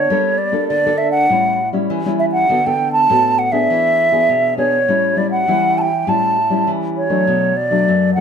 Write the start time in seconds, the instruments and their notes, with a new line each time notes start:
Already playing: flute C#5
0.10 nylon-string guitar G3 A#3 D4 A4
0.38 flute D5
0.52 nylon-string guitar A#3 D4 A4
0.68 nylon-string guitar D3, flute D5
0.86 nylon-string guitar A#3 D4 A4
0.98 flute E5
1.12 flute F#5
1.30 nylon-string guitar A2 G3 C#4 E4
1.73 nylon-string guitar G3 C#4 E4
1.90 nylon-string guitar E3
2.06 nylon-string guitar G3 C#4 E4
2.19 flute E5
2.32 flute F#5
2.49 nylon-string guitar D3 B3 F#4 A4
2.66 nylon-string guitar B3 A4, flute G5
2.92 flute A5
3.10 nylon-string guitar A2 B3 F#4 A4
3.39 flute F#5
3.52 nylon-string guitar B3 D4 G#4, flute E5
3.70 nylon-string guitar E3
4.12 nylon-string guitar B3 D4 G#4
4.29 nylon-string guitar B2
4.57 nylon-string guitar B3 D4 G#4, flute C#5
4.88 nylon-string guitar A2 G3 C#4 E4
5.16 nylon-string guitar G3 C#4 E4, flute D5
5.31 flute F#5
5.47 nylon-string guitar E3 G3 C#4 E4
5.78 flute G5 A5
6.07 nylon-string guitar A2 G3 C#4 E4, flute A5
6.50 nylon-string guitar G3 C#4 E4
6.67 nylon-string guitar E3
6.97 flute C#5
7.09 nylon-string guitar F#3 A3 D4
7.27 nylon-string guitar B2
7.57 flute D5
7.70 nylon-string guitar F#3 A3 D4
7.88 nylon-string guitar F#2
8.15 nylon-string guitar F#3 A3 D4, flute F#5